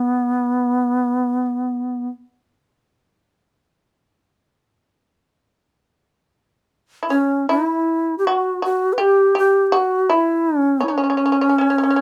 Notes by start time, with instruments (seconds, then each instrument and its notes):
Already playing: shakuhachi B3
7.03 shamisen E4
7.10 shakuhachi C#4, shamisen C#4
7.49 shamisen E4, shakuhachi E4
8.18 shakuhachi G4
8.25 shakuhachi F#4, shamisen F#4
8.62 shamisen F#4, shakuhachi F#4
8.93 shakuhachi B4
8.98 shamisen G4, shakuhachi G4
9.35 shamisen G4, shakuhachi G4
9.67 shakuhachi G4
9.72 shamisen F#4
9.77 shakuhachi F#4
10.10 shamisen E4, shakuhachi E4
10.59 shakuhachi C#4
10.80 shamisen C#4, shakuhachi C#4
10.88 shamisen C#4
10.98 shamisen C#4
11.04 shamisen C#4
11.10 shamisen C#4
11.17 shamisen C#4
11.26 shamisen C#4
11.32 shamisen C#4
11.41 shamisen C#4
11.49 shamisen C#4
11.58 shamisen C#4
11.70 shamisen C#4
11.78 shamisen C#4
11.84 shamisen C#4
11.90 shamisen C#4
11.96 shamisen C#4